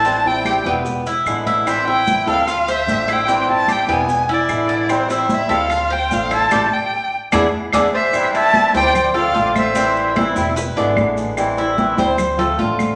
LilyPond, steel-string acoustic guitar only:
\new Staff \with { instrumentName = "Steel-string acoustic guitar" } { \time 4/4 \key a \minor \tempo 4 = 148 <e g c' e'>8 <g c' e'>4 <g c' e'>8 r4 <d gis b e'>4 | <e g c' e'>8 <g c' e'>4 <g c' e'>8 r4 <d a c' f'>4 | <e g c' e'>8 <g c' e'>4 <g c' e'>8 r4 <d gis b e'>4 | <e g c' e'>8 <g c' e'>4 <g c' e'>8 r4 <d a c' f'>4 |
<g a c'>8 r4. <b d' e'>8 r8 <b d' e'>8 r8 | <e g c' e'>4 <e g c' e'>8 <g c' e'>8 r8 <a c' f'>8 <d a c' f'>4 | <e g c' e'>4 <e g c' e'>8 <g c' e'>8 r8 <d gis b e'>8 <d gis b e'>4 | <e g c' e'>4 <e g c' e'>8 <g c' e'>8 r8 <a c' f'>8 <d a c' f'>4 | }